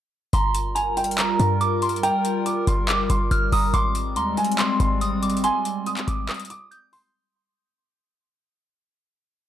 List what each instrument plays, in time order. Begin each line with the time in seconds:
0.33 808-style bass G1, analog synth pad G3 F4 A#4, grand piano A#5, synth bell C6, closed hi-hat
0.55 closed hi-hat
0.75 grand piano G#5, synth bell A#5, closed hi-hat
0.97 grand piano G5, closed hi-hat
1.04 closed hi-hat
1.11 closed hi-hat
1.18 grand piano A#5, clap, closed hi-hat
1.40 808-style bass G2, grand piano A#5, closed hi-hat
1.61 synth bell D6, closed hi-hat
1.82 synth bell C6, closed hi-hat
1.89 closed hi-hat
1.96 closed hi-hat
2.03 grand piano G5, synth bell A#5, closed hi-hat
2.25 closed hi-hat
2.46 grand piano D6, closed hi-hat
2.67 808-style bass G1, grand piano C6, closed hi-hat
2.89 synth bell D6, grand piano D6, clap, closed hi-hat
3.10 808-style bass G1, grand piano C6, closed hi-hat
3.31 808-style bass G1, synth bell F6, closed hi-hat
3.52 808-style bass G1, grand piano A#5, synth bell D#6, open hi-hat
3.74 808-style bass G#1, analog synth pad G3 G#3 C4, grand piano C6, synth bell D6, closed hi-hat
3.95 closed hi-hat
4.16 808-style bass D#2, grand piano A#5, synth bell C6, closed hi-hat
4.37 grand piano G#5, closed hi-hat
4.44 closed hi-hat
4.52 closed hi-hat
4.58 grand piano C6, clap, closed hi-hat
4.80 808-style bass G#1, grand piano C6, closed hi-hat
5.01 synth bell D#6, closed hi-hat
5.23 synth bell D6, closed hi-hat
5.30 closed hi-hat
5.37 closed hi-hat
5.44 grand piano G#5, synth bell C6, closed hi-hat
5.65 closed hi-hat
5.86 grand piano D#6, closed hi-hat
5.97 clap, closed hi-hat
6.07 808-style bass G#1, grand piano D6, closed hi-hat
6.29 synth bell D#6, grand piano D#6, cross-stick, clap, closed hi-hat
6.34 closed hi-hat
6.40 closed hi-hat
6.45 closed hi-hat
6.50 grand piano D6, closed hi-hat
6.71 synth bell G6, closed hi-hat
6.93 grand piano C6, synth bell C6, open hi-hat